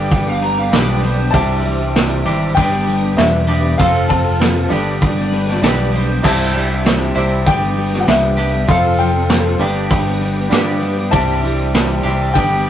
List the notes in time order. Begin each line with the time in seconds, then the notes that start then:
Already playing: G1 G2 D3 G3 B3 D4 G4 B4 D5 G5 D6
0.11 G5, kick, open hi-hat, shaker
0.27 G3 B3 D4 B4 F5
0.41 G3 B3 D4 B4 A#5, open hi-hat, shaker
0.58 G3 B3 D4 B4 F5
0.72 B1 G2 D3 G3 B3 D4 G4 B4 D5, snare, open hi-hat, shaker
1.02 G3 B3 D4 B4 C5, open hi-hat, shaker
1.17 G3 B3 D4 B4, shaker
1.31 C2 C3 E3 G3 D4 E4 G4 C5 D5 A5, kick, open hi-hat, shaker
1.35 G4 C5 E5 D6
1.49 shaker
1.64 G3 D4 E4 G4 C5 D5, open hi-hat, shaker
1.80 D4 E4 G4, shaker
1.95 C3 G3 D4 E4 G4 C5 D5, snare, open hi-hat, shaker
2.11 shaker
2.25 G#1 C3 E3 G3 D4 E4 G4, open hi-hat, shaker
2.41 shaker
2.55 G1 G2 D3 G3 B3 D4 G4 B4 D5 G5, kick, open hi-hat, shaker
2.71 G3 B3 D4 G4
2.86 G3 B3 D4 G4, open hi-hat, shaker
3.02 G3 B3 D4 G4
3.17 E1 G2 D3 G3 B3 D4 G4 B4 D5 E5, snare, open hi-hat, shaker
3.47 G2 D3 G3 B3 D4 G4, open hi-hat, shaker
3.62 G3 B3 D4 G4, shaker
3.78 F1 F3 C4 F4 A4 C5 F5 A5, kick, open hi-hat, shaker
3.95 shaker
4.08 F3 C4 F4 A4 A5, kick, open hi-hat, shaker
4.24 C4 F4 A4, shaker
4.39 F3 C4 F4 A4 B4, snare, open hi-hat, shaker
4.69 G1 G2 D3 G3 B3 D4 G4 B4 D5 G5 D6, open hi-hat, shaker
4.74 B4
4.87 shaker
5.01 D5, kick, open hi-hat, shaker
5.16 G3 B3 D4 B4, shaker
5.31 G3 B3 D4 B4, open hi-hat, shaker
5.46 G3 B3 D4 B4 D5, snare, shaker
5.60 B1 G2 D3 G3 B3 D4 G4 B4 D5, snare, open hi-hat, shaker
5.79 shaker
5.92 G3 B3 D4 B4 C5, open hi-hat, shaker
6.07 G3 B3 D4 B4, shaker
6.23 C2 C3 G3 C4 D4 E4 G4 C5 D5 E5 A5, kick, crash, shaker
6.39 shaker
6.53 G3 D4 E4 G4 C5 D5, open hi-hat, shaker
6.69 D4 E4 G4, shaker
6.84 C3 G3 D4 E4 G4 C5 D5, snare, open hi-hat, shaker
7.01 shaker
7.15 C2 C3 G3 C4 D4 E4 G4, open hi-hat, shaker
7.31 shaker
7.45 G1 G2 D3 G3 B3 D4 G4 B4 D5 G5 D6, kick, open hi-hat, shaker
7.61 G3 B3 D4 G4
7.75 G3 B3 D4 G4, open hi-hat, shaker
7.91 G3 B3 D4 G4, snare
8.00 F#5
8.06 C2 G2 D3 G3 B3 D4 G4 B4 D5 E5, snare, open hi-hat, shaker
8.37 G2 D3 G3 B3 D4 G4, open hi-hat, shaker
8.52 G3 B3 D4 G4, shaker
8.68 F1 F3 C4 F4 A4 C5 F5 C6, kick, open hi-hat, shaker
8.85 shaker
8.98 F3 C4 F4 A4 D5 G5, open hi-hat, shaker
9.13 C4 F4 A4, shaker
9.28 F3 C4 F4 A4, snare, open hi-hat, shaker
9.46 shaker
9.59 G1 G2 D3 G3 B3 D4 G4 B4 D5 G5 D6, open hi-hat, shaker
9.76 shaker
9.90 kick, open hi-hat, shaker
10.05 G3 B3 D4 G4
10.20 G3 B3 D4 G4, open hi-hat, shaker
10.36 G3 B3 D4 G4
10.49 G2 D3 G3 B3 D4 G4 B4 D5, snare, open hi-hat, shaker
10.81 G3 B3 D4 G4, open hi-hat, shaker
10.96 G3 B3 D4 G4, shaker
11.11 C2 C3 E3 G3 D4 E4 G4 C5 D5 E5 A5, kick, open hi-hat, shaker
11.28 shaker
11.41 G3 D4 E4 G4 C5 D5, open hi-hat, shaker
11.45 G4
11.58 D4 E4 G4, shaker
11.73 C3 G3 D4 E4 G4, snare, open hi-hat, shaker
11.89 shaker
12.03 C2 C3 E3 G3 D4 E4 G4, open hi-hat, shaker
12.08 G4
12.20 shaker
12.33 G1 G2 D3 G3 B3 D4 G4 B4 D5 G5, kick, open hi-hat, shaker
12.38 G4
12.51 G3 B3 D4 G4
12.66 G3, open hi-hat